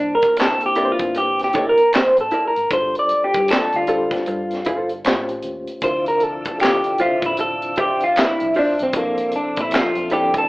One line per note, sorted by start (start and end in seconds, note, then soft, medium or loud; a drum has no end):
0.00 0.18 C2 loud
0.00 0.28 C3 medium
0.00 0.28 A#3 medium
0.00 0.14 D4 medium
0.00 0.28 D4 medium
0.00 0.29 E4 medium
0.00 0.29 C5 medium
0.15 0.40 A#4 medium
0.22 kick medium
0.22 closed hi-hat medium
0.22 shaker soft
0.36 0.72 C3 medium
0.36 0.72 A#3 medium
0.36 0.72 D4 medium
0.36 0.72 E4 medium
0.36 0.65 A4 medium
0.36 0.72 C5 medium
0.36 finger snap medium
0.36 closed hi-hat medium
0.36 shaker medium
0.40 snare loud
0.40 clap medium
0.60 closed hi-hat soft
0.60 shaker soft
0.66 0.91 G4 medium
0.75 2.11 C3 medium
0.75 2.11 A#3 medium
0.75 2.11 D4 medium
0.75 0.96 E4 medium
0.75 2.11 E4 medium
0.75 0.96 A#4 medium
0.75 0.85 B4 medium
0.75 0.97 D5 medium
0.75 muted fingered electric bass stroke soft
0.75 closed hi-hat medium
0.75 shaker soft
0.85 2.15 C5 medium
0.92 1.17 F4 medium
0.99 1.74 G1 medium
0.99 kick medium
0.99 closed hi-hat soft
0.99 shaker soft
1.14 1.43 G4 medium
1.14 muted hollow-body jazz guitar stroke soft
1.14 closed hi-hat medium
1.14 shaker medium
1.39 snare soft
1.39 closed hi-hat soft
1.39 shaker soft
1.44 1.67 G4 medium
1.53 1.65 D#4 medium
1.53 1.79 A#4 medium
1.53 1.80 D5 medium
1.53 kick medium
1.53 closed hi-hat medium
1.53 shaker soft
1.65 1.79 E4 medium
1.69 1.95 A#4 medium
1.77 closed hi-hat soft
1.77 shaker soft
1.93 2.20 C5 medium
1.93 finger snap medium
1.93 muted fingered electric bass stroke soft
1.93 snare loud
1.93 clap medium
1.93 closed hi-hat medium
1.93 shaker medium
2.17 2.31 A1 medium
2.17 closed hi-hat soft
2.17 shaker soft
2.21 2.44 A4 medium
2.31 2.52 E4 medium
2.31 2.53 A#4 medium
2.31 2.53 D5 medium
2.31 closed hi-hat medium
2.31 shaker soft
2.48 2.70 A#4 medium
2.56 2.70 G#1 medium
2.56 closed hi-hat soft
2.56 shaker soft
2.70 2.93 G1 medium
2.70 3.39 G3 medium
2.70 3.39 D4 medium
2.70 3.40 F4 medium
2.70 3.40 A4 medium
2.70 3.40 C5 medium
2.70 2.96 C5 loud
2.70 kick loud
2.70 closed hi-hat medium
2.70 shaker medium
2.95 closed hi-hat soft
2.95 shaker soft
2.99 3.25 D5 loud
3.09 muted fingered electric bass stroke soft
3.09 closed hi-hat medium
3.24 3.50 G4 medium
3.34 3.48 G2 medium
3.34 kick medium
3.34 closed hi-hat medium
3.34 shaker soft
3.48 3.83 G3 medium
3.48 3.83 D4 medium
3.48 3.84 F4 medium
3.48 3.76 A4 medium
3.48 3.84 A4 medium
3.48 3.84 D5 medium
3.48 finger snap medium
3.48 muted fingered electric bass stroke soft
3.48 closed hi-hat medium
3.48 shaker medium
3.52 snare loud
3.52 clap medium
3.72 4.09 D2 medium
3.72 4.88 F4 medium
3.72 closed hi-hat soft
3.72 shaker soft
3.87 5.05 G3 medium
3.87 5.05 D4 medium
3.87 4.08 F4 medium
3.87 5.05 F4 medium
3.87 4.08 A4 medium
3.87 5.05 A4 medium
3.87 4.09 C5 medium
3.87 5.05 C5 medium
3.87 closed hi-hat medium
3.87 shaker soft
4.11 kick medium
4.11 closed hi-hat soft
4.11 shaker soft
4.15 snare soft
4.26 4.62 G2 medium
4.26 muted hollow-body jazz guitar stroke soft
4.26 closed hi-hat medium
4.26 shaker medium
4.51 snare soft
4.51 closed hi-hat soft
4.51 shaker soft
4.64 5.01 G1 medium
4.64 4.91 F4 medium
4.64 4.91 A4 medium
4.64 4.92 C5 medium
4.64 kick medium
4.64 closed hi-hat medium
4.64 shaker soft
4.89 closed hi-hat soft
4.89 shaker soft
5.04 5.40 A1 medium
5.04 5.73 A2 medium
5.04 5.73 A3 medium
5.04 5.74 C#4 medium
5.04 5.74 F4 medium
5.04 5.74 G4 medium
5.04 5.74 C5 loud
5.04 finger snap medium
5.04 snare loud
5.04 clap loud
5.04 closed hi-hat medium
5.04 shaker medium
5.29 closed hi-hat soft
5.29 shaker soft
5.42 5.66 D#2 medium
5.42 closed hi-hat medium
5.42 shaker soft
5.67 closed hi-hat soft
5.67 shaker soft
5.81 6.42 D2 medium
5.81 10.49 C3 medium
5.81 6.51 D3 medium
5.81 8.90 F3 medium
5.81 10.49 D4 medium
5.81 6.51 D4 medium
5.81 6.51 E4 medium
5.81 6.52 F4 medium
5.81 5.92 A#4 medium
5.81 6.06 C5 medium
5.81 10.49 E5 medium
5.81 kick medium
5.81 closed hi-hat medium
5.81 shaker medium
5.91 6.55 C5 medium
6.05 6.23 A#4 loud
6.05 closed hi-hat soft
6.05 shaker soft
6.20 6.61 A4 loud
6.20 closed hi-hat medium
6.45 kick medium
6.45 closed hi-hat medium
6.45 shaker soft
6.59 6.95 D3 medium
6.59 6.95 D4 medium
6.59 6.95 E4 medium
6.59 6.95 F4 medium
6.59 7.01 G4 medium
6.59 6.96 A4 medium
6.59 finger snap medium
6.59 closed hi-hat medium
6.59 shaker medium
6.64 snare medium
6.64 clap medium
6.84 closed hi-hat soft
6.84 shaker soft
6.98 8.34 D3 medium
6.98 8.34 D4 medium
6.98 8.34 E4 medium
6.98 7.20 F4 medium
6.98 7.25 F4 loud
6.98 8.34 F4 medium
6.98 7.20 C5 medium
6.98 8.35 C5 medium
6.98 7.20 E5 medium
6.98 muted fingered electric bass stroke soft
6.98 closed hi-hat medium
6.98 shaker soft
7.22 7.97 A1 medium
7.22 kick medium
7.22 closed hi-hat soft
7.22 shaker soft
7.26 7.40 E4 medium
7.37 7.79 A4 loud
7.37 muted hollow-body jazz guitar stroke soft
7.37 closed hi-hat medium
7.37 shaker medium
7.62 closed hi-hat soft
7.62 shaker soft
7.76 8.02 F4 medium
7.76 8.03 C5 medium
7.76 8.03 E5 medium
7.76 kick medium
7.76 closed hi-hat medium
7.76 shaker soft
7.80 8.03 G4 medium
8.00 8.19 F4 medium
8.00 closed hi-hat soft
8.00 shaker soft
8.16 8.58 E4 medium
8.16 finger snap medium
8.16 muted fingered electric bass stroke soft
8.16 snare loud
8.16 clap medium
8.16 closed hi-hat medium
8.16 shaker soft
8.40 8.54 C2 medium
8.40 closed hi-hat soft
8.40 shaker soft
8.54 8.76 F4 medium
8.54 8.76 C5 medium
8.54 8.76 E5 medium
8.54 open hi-hat soft
8.54 shaker soft
8.59 8.82 D4 medium
8.79 8.94 B1 medium
8.79 closed hi-hat soft
8.79 shaker soft
8.83 8.96 C4 medium
8.93 9.16 A#1 loud
8.93 9.63 A#2 medium
8.93 9.63 F3 medium
8.93 10.49 C4 medium
8.93 9.63 C4 medium
8.93 9.63 D4 medium
8.93 9.64 E4 medium
8.93 9.64 A4 medium
8.93 kick medium
8.93 closed hi-hat medium
8.93 shaker medium
8.97 9.32 A#3 medium
9.17 closed hi-hat soft
9.17 shaker soft
9.31 muted fingered electric bass stroke soft
9.31 closed hi-hat medium
9.36 9.60 D4 medium
9.56 9.71 A#2 medium
9.56 kick medium
9.56 closed hi-hat medium
9.56 shaker soft
9.60 9.75 E4 medium
9.71 10.06 A#2 medium
9.71 10.07 F3 medium
9.71 10.07 C4 medium
9.71 10.07 D4 medium
9.71 10.07 A4 medium
9.71 10.07 E5 medium
9.71 finger snap medium
9.71 muted fingered electric bass stroke soft
9.71 closed hi-hat medium
9.71 shaker medium
9.75 10.13 F4 medium
9.75 snare loud
9.75 clap medium
9.95 10.32 F2 medium
9.95 closed hi-hat soft
9.95 shaker soft
10.10 10.49 A#2 medium
10.10 10.49 F3 medium
10.10 10.49 C4 medium
10.10 10.49 D4 medium
10.10 10.31 E4 medium
10.10 10.49 E4 medium
10.10 10.37 G4 medium
10.10 10.32 A4 medium
10.10 10.49 D5 medium
10.10 10.32 D5 medium
10.10 closed hi-hat medium
10.10 shaker soft
10.34 kick medium
10.34 closed hi-hat soft
10.34 shaker soft
10.38 10.49 A4 medium